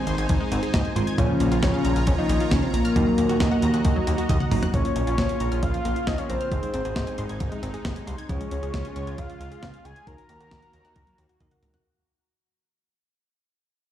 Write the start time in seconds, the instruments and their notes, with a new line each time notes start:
Already playing: tine electric piano D#3 G#3 C4 D#4, analog synth pad D#4 C5 G#5
0.07 analog synth bass G#1, synth pluck C6, closed hi-hat
0.18 analog synth bass G#1, synth pluck G#6, closed hi-hat
0.29 analog synth bass G#1, synth pluck D#3, kick, closed hi-hat
0.40 synth pluck G#3
0.52 analog synth bass G#1, synth pluck C4, closed hi-hat
0.63 synth pluck G#4, closed hi-hat
0.74 analog synth bass G#1, synth pluck D#5, kick, snare, closed hi-hat
0.85 synth pluck G#5
0.96 analog synth bass G#1, tine electric piano D#3 G#3 C4 F4, synth pluck C6, closed hi-hat
1.07 synth pluck G#6, closed hi-hat
1.18 analog synth bass A#1, synth pluck C#3, tine electric piano F3 A#3 C#4 F4, analog synth lead C#4, analog synth pad F4 C#5 A#5, kick, closed hi-hat
1.29 synth pluck F3
1.40 analog synth bass A#1, synth pluck A#3, closed hi-hat
1.52 analog synth bass A#1, synth pluck F4, closed hi-hat
1.63 analog synth bass A#1, analog synth lead C#4, synth pluck C#5, kick, snare, closed hi-hat
1.74 synth pluck F5
1.85 analog synth bass A#1, synth pluck A#5, closed hi-hat
1.96 analog synth bass A#1, synth pluck F6, closed hi-hat
2.07 analog synth bass A#1, synth pluck C#3, analog synth lead C#4, kick, closed hi-hat
2.18 synth pluck F3, analog synth lead D#4
2.29 analog synth bass A#1, synth pluck A#3, closed hi-hat
2.40 synth pluck F4, closed hi-hat
2.51 analog synth bass A#1, analog synth lead C#4, synth pluck C#5, kick, snare, closed hi-hat
2.63 analog synth lead C4, synth pluck F5
2.74 analog synth bass A#1, analog synth lead A#3, synth pluck A#5, closed hi-hat
2.85 synth pluck F6, closed hi-hat
2.96 analog synth bass D#2, synth pluck D#3, tine electric piano F#3 A#3 D#4 F#4, analog synth pad F#4 D#5, kick, closed hi-hat
3.07 synth pluck F#3
3.18 analog synth bass D#2, synth pluck A#3, closed hi-hat
3.29 analog synth bass D#2, synth pluck F#4, closed hi-hat
3.40 analog synth bass D#2, synth pluck D#5, kick, snare, closed hi-hat
3.51 synth pluck F#5
3.62 analog synth bass D#2, synth pluck A#5, closed hi-hat
3.74 analog synth bass D#2, synth pluck F#6, closed hi-hat
3.85 analog synth bass D#2, synth pluck D#3, kick, closed hi-hat
3.96 synth pluck F#3
4.07 analog synth bass D#2, synth pluck A#3, closed hi-hat
4.18 synth pluck F#4, closed hi-hat
4.29 analog synth bass D#2, synth pluck D#5, kick, closed hi-hat, high tom
4.40 synth pluck F#5, mid tom
4.51 analog synth bass G#1, tine electric piano F#3 A#3 D#4 F#4, synth pluck A#5, mid tom, open hi-hat
4.63 synth pluck F#6, closed hi-hat, floor tom
4.74 analog synth bass A#1, analog synth pad C#3 A#3 F4, synth pluck C#3, tine electric piano A#3 C#4 F4, analog synth lead C#5, kick, closed hi-hat
4.85 synth pluck F3, closed hi-hat
4.96 analog synth bass A#1, synth pluck A#3, closed hi-hat
5.07 analog synth bass A#1, synth pluck F4, closed hi-hat
5.18 analog synth bass A#1, synth pluck C#5, kick, snare, closed hi-hat
5.29 synth pluck F5, closed hi-hat
5.40 analog synth bass A#1, synth pluck A#5, closed hi-hat
5.52 analog synth bass A#1, synth pluck F6, closed hi-hat
5.63 analog synth bass A#1, synth pluck C#3, analog synth lead F5, kick, closed hi-hat
5.74 synth pluck F3, closed hi-hat
5.85 analog synth bass A#1, synth pluck A#3, closed hi-hat
5.96 synth pluck F4, closed hi-hat
6.07 analog synth bass A#1, synth pluck C#5, analog synth lead D#5, kick, snare, closed hi-hat
6.18 analog synth lead C#5, synth pluck F5, closed hi-hat
6.29 analog synth bass A#1, analog synth lead C5, synth pluck A#5, closed hi-hat
6.41 synth pluck F6, closed hi-hat
6.52 analog synth bass G#1, analog synth pad C3 G#3 D#4, synth pluck D#3, tine electric piano C4 D#4 G#4, kick, closed hi-hat
6.63 synth pluck G#3, closed hi-hat
6.74 analog synth bass G#1, synth pluck C4, closed hi-hat
6.85 analog synth bass G#1, synth pluck G#4, closed hi-hat
6.96 analog synth bass G#1, synth pluck D#5, kick, snare, closed hi-hat
7.07 synth pluck G#5, closed hi-hat
7.18 analog synth bass G#1, synth pluck C6, closed hi-hat
7.29 analog synth bass G#1, synth pluck G#6, closed hi-hat
7.40 analog synth bass G#1, synth pluck D#3, kick, closed hi-hat
7.52 synth pluck G#3, closed hi-hat
7.63 analog synth bass G#1, synth pluck C4, closed hi-hat
7.74 synth pluck G#4, closed hi-hat
7.85 analog synth bass G#1, synth pluck D#5, kick, snare, closed hi-hat
7.96 synth pluck G#5, closed hi-hat
8.07 analog synth bass C2, synth pluck C6, closed hi-hat
8.18 synth pluck G#6, closed hi-hat
8.29 analog synth bass C#2, analog synth pad C#3 G#3 F4, synth pluck F3, tine electric piano C#4 F4 G#4, analog synth lead C#5, kick, closed hi-hat
8.41 synth pluck G#3, closed hi-hat
8.51 analog synth bass C#2, synth pluck C#4, closed hi-hat
8.63 analog synth bass C#2, synth pluck G#4, closed hi-hat
8.74 analog synth bass C#2, synth pluck F5, kick, snare, closed hi-hat
8.85 synth pluck G#5, closed hi-hat
8.96 analog synth bass C#2, synth pluck C#6, closed hi-hat
9.07 analog synth bass C#2, synth pluck G#6, closed hi-hat
9.18 analog synth bass C#2, synth pluck F3, analog synth lead F5, kick, closed hi-hat
9.29 synth pluck G#3, closed hi-hat
9.40 analog synth bass C#2, synth pluck C#4, analog synth lead F5, closed hi-hat
9.52 synth pluck G#4, closed hi-hat
9.63 analog synth bass C#2, synth pluck F5, kick, snare, closed hi-hat
9.74 synth pluck G#5, closed hi-hat
9.85 analog synth bass C#2, analog synth lead G#5, synth pluck C#6, closed hi-hat
9.96 synth pluck G#6, closed hi-hat
10.07 analog synth bass D#2, synth pluck D#3, analog synth pad D#3 A#3 F#4, tine electric piano D#4 F#4 A#4, analog synth lead A#5, kick, closed hi-hat
10.18 synth pluck F#3, closed hi-hat
10.29 analog synth bass D#2, synth pluck A#3, closed hi-hat
10.40 analog synth bass D#2, synth pluck F#4, closed hi-hat
10.51 analog synth bass D#2, synth pluck D#5, kick, snare, closed hi-hat
10.63 synth pluck F#5, closed hi-hat
10.73 analog synth bass D#2, synth pluck A#5, closed hi-hat
10.85 analog synth bass D#2, synth pluck F#6, closed hi-hat
10.96 analog synth bass D#2, synth pluck D#3, kick, closed hi-hat
11.07 synth pluck F#3, closed hi-hat
11.18 analog synth bass D#2, synth pluck A#3, closed hi-hat
11.29 synth pluck F#4, closed hi-hat
11.40 analog synth bass D#2, tine electric piano D#4 F#4 A#4, synth pluck D#5, kick, closed hi-hat, high tom
11.51 synth pluck F#5, closed hi-hat, mid tom
11.63 analog synth bass C#2, synth pluck A#5, closed hi-hat, mid tom
11.74 synth pluck F#6, closed hi-hat, floor tom